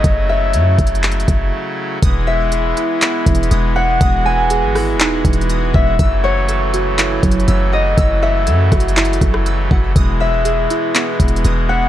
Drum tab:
HH |x-----------x-----x-x-x-x-x-x-x-----------------|x-----------x-----x-----x-----x-x-x-x-----------|x-----------x-----o-----x-----x-x-x-x-----------|x-----------x-----x-----x-----x-x-x-x-----------|
CP |------------------------x-----------------------|------------------------x-----------------------|------------------------x-----------------------|------------------------x-----------------------|
SD |------------------------------------------------|------------------------------------------------|------------------r-----------------------------|------------------------------------------------|
BD |o-----------------o-----------o-----------------|o-----------------------------o-----------------|o-----------------------------o-----------o-----|o-----------------------------o-----------------|

HH |x-----------x-----x-x-x-x-x-x-x-----x-----------|x-----------x-----x-----x-----x-x-x-x-----------|
CP |------------------------x-----------------------|------------------------x-----------------------|
SD |------------------r--------------r--------------|------------------------------------------------|
BD |o-----------------o-----------o-----------o-----|o-----------------------------o-----------------|